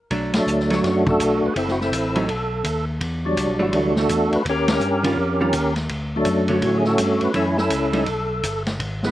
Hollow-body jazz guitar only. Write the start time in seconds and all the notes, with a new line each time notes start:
0.11 F#3 A3 D4
0.71 F#3 A3 D4
2.16 F#3 A3 D#4
3.59 E3 A3 D4
5.03 D#3 G3 C#4 F4
5.40 D#3 G3 C#4 F4
6.49 D3 F#3 A3 C#4
7.34 E3 A3 C#4
7.93 G3 A3 D#4